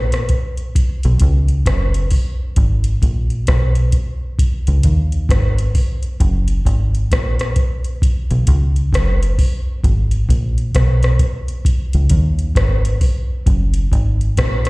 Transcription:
0.00 0.27 A#1 loud
0.12 cross-stick medium
0.12 closed hi-hat soft
0.29 kick medium
0.29 closed hi-hat medium
0.57 closed hi-hat soft
0.75 kick loud
0.75 closed hi-hat medium
1.03 1.20 B1 medium
1.03 closed hi-hat soft
1.19 1.63 C#2 medium
1.19 kick medium
1.19 closed hi-hat medium
1.48 closed hi-hat soft
1.66 2.08 F#1 medium
1.66 kick loud
1.66 cross-stick loud
1.66 closed hi-hat medium
1.94 closed hi-hat medium
2.11 kick medium
2.11 open hi-hat medium
2.56 2.99 G#1 medium
2.56 kick loud
2.56 closed hi-hat medium
2.84 closed hi-hat medium
3.02 3.44 A#1 medium
3.02 kick medium
3.02 closed hi-hat medium
3.30 closed hi-hat soft
3.47 3.90 B1 medium
3.47 kick medium
3.47 cross-stick medium
3.47 closed hi-hat medium
3.75 closed hi-hat soft
3.92 kick medium
3.92 closed hi-hat medium
4.39 kick loud
4.39 closed hi-hat loud
4.67 4.83 C#2 medium
4.67 closed hi-hat medium
4.83 5.26 D#2 medium
4.83 kick medium
4.83 closed hi-hat medium
5.12 closed hi-hat soft
5.29 5.71 G#1 medium
5.29 kick loud
5.29 cross-stick loud
5.29 closed hi-hat medium
5.58 closed hi-hat medium
5.75 kick medium
5.75 open hi-hat medium
6.03 closed hi-hat soft
6.20 6.62 F#1 loud
6.20 kick loud
6.20 closed hi-hat medium
6.48 closed hi-hat medium
6.65 7.07 G#1 medium
6.65 kick medium
6.65 closed hi-hat medium
6.95 closed hi-hat soft
7.12 7.53 A#1 medium
7.12 kick medium
7.12 cross-stick medium
7.12 closed hi-hat medium
7.39 cross-stick medium
7.39 closed hi-hat soft
7.56 kick medium
7.56 closed hi-hat medium
7.84 closed hi-hat soft
8.02 kick loud
8.02 closed hi-hat loud
8.31 8.46 B1 medium
8.31 closed hi-hat soft
8.47 8.89 C#2 medium
8.47 kick medium
8.47 closed hi-hat medium
8.76 closed hi-hat soft
8.93 9.34 F#1 medium
8.93 kick loud
8.93 cross-stick loud
8.93 closed hi-hat loud
9.23 closed hi-hat medium
9.39 kick loud
9.39 open hi-hat medium
9.84 10.25 G#1 medium
9.84 kick loud
9.84 closed hi-hat medium
10.11 closed hi-hat soft
10.29 10.70 A#1 medium
10.29 kick medium
10.29 closed hi-hat medium
10.58 closed hi-hat soft
10.75 11.16 B1 loud
10.75 kick medium
10.75 cross-stick loud
10.75 closed hi-hat medium
11.03 cross-stick medium
11.03 closed hi-hat soft
11.19 kick medium
11.19 closed hi-hat medium
11.48 closed hi-hat soft
11.65 kick loud
11.65 closed hi-hat loud
11.93 12.10 C#2 medium
11.93 closed hi-hat medium
12.09 12.52 D#2 medium
12.09 kick medium
12.09 closed hi-hat medium
12.39 closed hi-hat soft
12.55 12.97 G#1 medium
12.55 kick loud
12.55 cross-stick loud
12.55 closed hi-hat medium
12.85 closed hi-hat medium
13.01 kick loud
13.01 open hi-hat medium
13.46 13.88 F#1 medium
13.46 kick loud
13.46 closed hi-hat medium
13.74 closed hi-hat medium
13.92 14.33 G#1 medium
13.92 kick medium
13.92 closed hi-hat medium
14.21 closed hi-hat soft
14.37 14.70 A#1 medium
14.37 kick medium
14.37 cross-stick loud
14.37 closed hi-hat medium
14.65 closed hi-hat medium

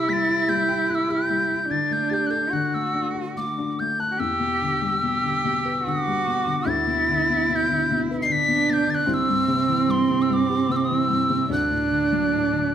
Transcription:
0.00 1.66 C3 medium
0.00 0.08 G3 soft
0.00 0.27 E4 medium
0.00 1.65 E4 medium
0.00 1.08 G4 medium
0.00 0.11 E6 medium
0.08 0.47 G3 medium
0.08 0.14 B6 medium
0.13 0.51 A6 medium
0.29 0.89 E4 soft
0.48 1.28 G3 medium
0.48 0.92 G6 medium
0.69 1.66 G5 soft
0.90 1.51 E4 medium
0.90 0.96 F#6 medium
0.95 1.12 E6 medium
1.09 1.67 G4 medium
1.09 1.73 G6 medium
1.29 1.68 G3 soft
1.52 1.70 E4 soft
1.69 2.49 D3 medium
1.69 2.52 D4 medium
1.69 1.94 A6 medium
1.90 2.49 A3 soft
1.90 2.11 G6 medium
2.10 2.50 G4 medium
2.10 2.28 G6 medium
2.10 2.15 A6 medium
2.27 2.50 A4 soft
2.27 2.32 F#6 medium
2.27 2.55 G6 medium
2.50 4.16 D3 medium
2.50 3.77 F#4 medium
2.50 2.65 F#6 medium
2.65 2.76 F#6 medium
2.74 3.35 A3 soft
2.74 3.09 E6 medium
2.94 3.57 D4 soft
3.15 4.16 F#4 soft
3.36 3.79 A3 soft
3.36 3.81 D6 medium
3.58 4.18 D4 soft
3.80 4.19 A3 medium
3.80 4.01 G6 medium
4.00 4.19 A5 soft
4.00 4.21 F#6 medium
4.12 4.19 F#4 medium
4.17 6.64 E2 medium
4.17 5.00 G4 medium
4.17 5.90 E6 medium
4.40 5.01 B2 soft
4.62 5.22 D3 soft
4.82 6.06 G3 soft
5.00 5.43 B2 medium
5.00 5.80 G4 medium
5.23 5.86 D3 soft
5.44 6.25 B2 medium
5.65 6.65 B4 soft
5.84 6.45 D3 soft
5.84 6.59 F#4 medium
5.89 6.71 D6 medium
6.08 6.66 G3 soft
6.27 6.66 B2 soft
6.47 6.67 D3 soft
6.59 6.66 F#4 medium
6.65 9.03 D2 medium
6.65 8.28 E4 medium
6.69 7.51 A6 medium
6.87 7.48 B2 soft
7.10 7.68 D3 medium
7.29 8.46 B3 soft
7.49 7.89 B2 medium
7.49 7.57 A6 medium
7.56 8.00 G6 medium
7.69 8.28 D3 soft
7.91 8.67 B2 medium
8.11 9.06 B4 soft
8.22 9.08 D4 loud
8.22 8.33 C7 medium
8.30 8.86 D3 medium
8.30 8.71 B6 loud
8.48 9.05 B3 medium
8.68 9.06 B2 soft
8.68 8.74 A6 medium
8.73 8.92 G6 medium
8.87 9.06 D3 medium
8.87 8.95 A6 medium
8.94 9.10 F#6 medium
9.06 11.47 C2 medium
9.06 11.50 C4 loud
9.06 9.15 F#6 medium
9.14 9.92 E6 loud
9.29 9.87 G2 soft
9.48 10.07 C3 medium
9.68 10.89 E3 soft
9.89 10.28 G2 medium
9.89 10.23 C6 medium
10.09 10.67 C3 soft
10.22 10.30 E6 medium
10.29 11.07 G2 medium
10.29 10.73 D6 medium
10.29 10.34 E6 medium
10.50 11.48 G4 soft
10.69 11.28 C3 medium
10.69 10.78 E6 medium
10.76 10.87 D6 medium
10.85 11.52 E6 medium
10.90 11.49 E3 soft
11.09 11.49 G2 soft
11.30 11.50 C3 medium
11.50 12.75 D2 medium
11.50 12.75 D4 medium
11.50 12.75 F#6 medium
11.70 12.31 A2 soft
11.90 12.52 D3 medium
12.12 12.75 F#3 soft
12.33 12.73 A2 soft
12.53 12.75 D3 soft

